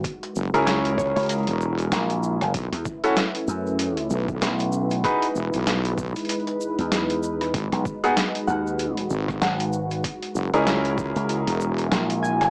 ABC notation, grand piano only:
X:1
M:4/4
L:1/16
Q:"Swing 16ths" 1/4=96
K:F#mix
V:1 name="Grand piano"
z3 [CEGA]12- [CEGA] | z3 [CEF=A] z12 | [DFGB] z12 z3 | z3 [B,DFG] z12 |
z3 [CEGA]12- [CEGA] |]